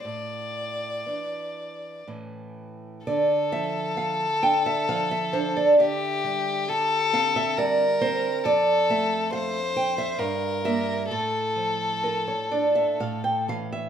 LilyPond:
<<
  \new Staff \with { instrumentName = "Nylon-string guitar" } { \time 3/4 \key d \minor \tempo 4 = 66 << { r2. | d''8 e''8 f''8 g''16 e''16 f''16 e''16 c''16 d''16 | e''4. f''16 e''16 d''8 c''8 | d''8 e''8 f''8 g''16 e''16 f''8 e''8 |
a'4 bes'16 cis''16 d''16 e''16 f''16 g''16 f''16 e''16 | } \\ { a,4 <e d'>4 <a, e cis'>4 | d8 f8 f'8 d'8 f8 d'8 | d8 g8 g'8 c'8 g8 c'8 | f,8 a8 a'8 c''8 g,8 <g bes>8 |
a,8 f8 f'8 d'8 a,8 <e cis'>8 | } >> }
  \new Staff \with { instrumentName = "Violin" } { \time 3/4 \key d \minor d''2 r4 | a'2. | g'4 a'4 bes'4 | a'4 c''4 bes'4 |
a'2~ a'8 r8 | }
>>